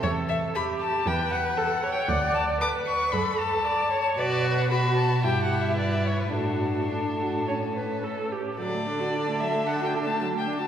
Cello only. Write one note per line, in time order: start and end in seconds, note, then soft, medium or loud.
0.03 0.44 E2 medium
1.06 1.47 E2 medium
2.09 2.50 D2 medium
3.13 3.54 F#2 medium
4.19 5.25 B2 soft
5.24 6.34 G2 soft
6.35 8.36 A2 soft
8.60 10.68 D3 soft